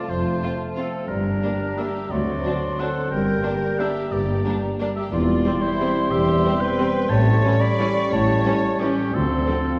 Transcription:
Already playing: bassoon F3, harp A3 F4 A4 F5, french horn section A3 F4, oboe D5, flute A5
0.08 double bass section F1, cello section F2, harp F2, clarinet F4, violin section F4, oboe C5
0.27 harp A3
0.43 viola section A3 C4, violin section F4, harp A4
0.61 harp F5
0.75 viola section A3 C4, clarinet C4, violin section C4 F4, oboe A4, harp A4
0.95 harp F4
1.09 double bass section G1, cello section G2, harp G2, bassoon G3, french horn section G3 D4, clarinet D4, violin section D4, oboe A#4, flute A#5
1.27 harp A#3
1.43 viola section G3 A#3, violin section D4, harp G4
1.61 harp D5
1.78 viola section G3 A#3, violin section D4 G4, clarinet G4, harp A#4, oboe E5
1.95 harp G4
2.11 cello section D2, double bass section D2, harp D3, french horn section F#3 C4, bassoon F#3, clarinet F#4, violin section F#4, oboe D5, flute C6
2.28 harp C4
2.45 viola section F#3 C4, violin section D4, harp F#4
2.62 harp D5
2.79 viola section F#3 C4, violin section D4 A4, clarinet A4, harp C5, oboe F#5
2.97 harp F#4
3.11 double bass section G1, cello section G2, harp G2, french horn section G3 A#3, bassoon G3, clarinet A#4, violin section A#4, oboe G5
3.28 harp A#3
3.44 viola section G3 A#3, violin section D4, harp G4
3.63 harp D5
3.79 viola section G3 A#3, violin section D4 G4, clarinet G4, harp A#4, oboe E5, flute A#5
4.12 double bass section G1, harp G2, cello section G2, violin section G4, clarinet G4, oboe D5
4.29 harp A#3
4.45 viola section G3 A#3, violin section D4, harp G4
4.63 harp D5
4.79 viola section G3 A#3, violin section D4, harp A#4
4.96 clarinet G4, violin section G4, harp G4, oboe E5
5.11 double bass section E1, cello section E2, harp E2, bassoon G3, french horn section G3 C4, clarinet F4, violin section F4, oboe D5, flute C6
5.29 harp G3
5.45 viola section G3, violin section C4, harp G4
5.62 violin section E4, clarinet E4, oboe C5, harp C5
5.80 viola section G3, violin section C4, harp G4
6.10 double bass section E1, harp E2, cello section E2, clarinet G4, violin section G4, oboe E5
6.27 harp G3
6.44 viola section G3, violin section C4, harp G4
6.61 clarinet B4, violin section B4, harp C5, oboe G5
6.78 viola section G3, violin section C4, harp G4
6.95 harp C4
7.09 double bass section A1, harp A2, cello section A2, bassoon G3, french horn section G3 C#4, clarinet C#5, violin section C#5, oboe A5, flute C#6
7.26 harp A3
7.44 viola section E3 G3, violin section C#4, harp G4
7.60 clarinet D5, violin section D5, oboe B5
7.79 viola section E3 G3, violin section C#4, harp A4
7.97 harp G4
8.12 double bass section A1, cello section A2, harp A2, clarinet C#5, violin section C#5, oboe A5
8.29 harp A3
8.45 viola section E3 G3, violin section C#4, harp G4
8.63 harp C#5
8.80 viola section E3 G3, violin section C#4, clarinet C#4, oboe G4
8.97 harp G4
9.13 cello section D2, double bass section D2, harp D3, french horn section F3 C4, bassoon F3, clarinet C4, violin section C4, oboe A4, flute C6
9.30 harp C4
9.47 viola section D3 F3, violin section C4, harp A4
9.64 harp F5

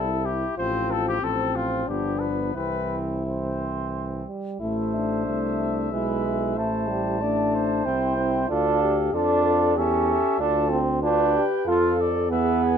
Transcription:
Already playing: bass trombone C2, french horn E4, trumpet A4
0.25 trumpet G4
0.57 bass trombone A1, trombone F3, flugelhorn C4, french horn F4, trumpet C5
0.91 trumpet A4
1.08 trumpet G4
1.22 bass trombone A1, trombone F3, flugelhorn C4, french horn C4, trumpet A4
1.55 trumpet F4
1.87 bass trombone G1, trombone F3, flugelhorn B3, french horn D4, trumpet G4
2.20 trumpet B4
2.54 bass trombone C2, trombone E3, flugelhorn C4, french horn E4, trumpet B4
3.23 trombone E3, flugelhorn C4, trumpet C5
4.26 trombone G3
4.60 bass trombone A1, trombone A3, french horn E4, flugelhorn C5, trumpet E5
4.95 french horn D4
5.26 bass trombone C2, trombone A3
5.91 bass trombone B1, trombone G#3, french horn E4, flugelhorn B4
6.25 french horn E4
6.56 bass trombone A1, trombone A3, flugelhorn C5, trumpet A5
6.89 trombone G3
7.21 trombone A3, french horn D4, flugelhorn D5
7.55 flugelhorn C5
7.85 bass trombone C2, trombone C4, french horn E4, trumpet G5
8.17 trombone C4
8.49 bass trombone D2, trombone D4, french horn F4, flugelhorn A4, trumpet F5
8.82 french horn G4
9.12 bass trombone F2, trombone D4, flugelhorn F4, french horn A4, trumpet D5
9.46 french horn A4
9.76 bass trombone E2, trombone C#4, french horn G4, flugelhorn A4, trumpet E5
10.10 trumpet E5
10.39 bass trombone D2, trombone D4, french horn F4, flugelhorn A4, trumpet A5
10.70 trombone C4
11.02 trombone D4, french horn F4, flugelhorn B4, trumpet G5
11.36 french horn G4
11.66 bass trombone F2, trombone F4, french horn A4, flugelhorn A4, trumpet F5
12.01 trumpet D5
12.29 bass trombone E2, trombone B3, french horn G#4, flugelhorn B4, trumpet E5
12.63 trumpet G#5

